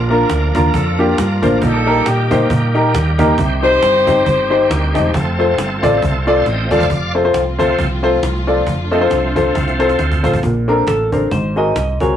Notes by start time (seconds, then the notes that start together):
Already playing: A#1 A#2 F3 A#3 D4 A#4
0.10 A#3 D4 F4 A#4, cajon slap
0.30 D2, cajon slap
0.55 D#2 A#3 D4 F4 A#4, cajon bass
0.74 F2 D4 F4 A4, cajon bass
0.98 A#3 D4 F4 G4, cajon slap
1.18 G2, cajon slap
1.42 A1 A#3 D4 F4 C5, cajon bass
1.61 A#1 A#2 D#3 G3 A#3 D#4 F4 A4, cajon bass
1.67 G4
1.86 A#3 D#4 G4 A#4, cajon slap
2.06 A#2 A#3 D#4 G4, cajon slap
2.31 A#3 D#4 G4 C5, cajon bass
2.41 cajon slap
2.50 A#2 D#4 G4 A#4, cajon bass
2.74 A#3 D#4 G4 A#4, cajon slap
2.94 D#2, cajon slap
3.19 A#3 D#4 G4 A#4, cajon bass
3.38 C2 C3 D#3 G3 C4 G4, cajon bass
3.63 C4 D#4 G4 C5, cajon slap
3.82 G1, cajon slap
4.07 C4 D#4 G4 C5, cajon bass
4.17 cajon slap
4.25 G1 D#4 G4 C5, cajon bass
4.50 C4 D#4 G4 C5, cajon slap
4.69 D2 A#4, cajon slap
4.83 cajon slap
4.94 E1 C4 D#4 F4 G4 A4 D#5, cajon bass
5.13 F1 F3 A3 C4 A4, cajon bass
5.39 C4 F4 A4 C5, cajon slap
5.58 G1, cajon slap
5.83 A1 C4 F4 A4 D5, cajon bass
6.02 C2, cajon bass
6.26 C4 F4 A4 C5 D5, cajon slap
6.46 A1 D#5 G5, cajon slap
6.71 E1 C4 F4 A4 D5 F5, cajon bass
6.80 cajon bass
6.89 F1 F3 A3 C4 F4, cajon bass
7.15 C4 F4 A4 C5, cajon slap
7.24 C4 F4 A4 C5
7.34 C2, cajon bass, cajon slap
7.59 F3 A3 C4 F4 A4 C5, cajon bass
7.79 C2, cajon bass
8.03 C4 F4 A4 C5, cajon slap
8.23 C2, cajon slap
8.36 cajon slap
8.47 C4 F4 A4 D5, cajon slap
8.67 F1 D4, cajon bass
8.91 F3 A3 C4 F4 A4 D#5, cajon slap
9.01 C4 F4 A4 C5
9.10 C2, cajon bass, cajon slap
9.36 C4 F4 A4 C5, cajon bass
9.55 C2, cajon bass, cajon slap
9.68 cajon slap
9.79 C4 F4 A4 C5, cajon slap
9.89 cajon slap
9.99 D2, cajon slap
10.12 cajon bass
10.23 A1 C4 F4 A4 C5, cajon bass
10.34 cajon bass
10.43 A#1 A#2, cajon bass
10.68 C4 D4 A4 A#4, cajon slap
10.87 A1 A4, cajon bass, cajon slap
11.12 C4 D4 A4 A#4 C5, cajon bass
11.22 cajon slap
11.31 G#1 G#2 C5, cajon bass
11.56 C4 F#4 G#4 A#4 D#5, cajon slap
11.76 C2, cajon slap
11.88 cajon slap
12.00 C2 C4 F#4 G#4 A#4 C#5, cajon bass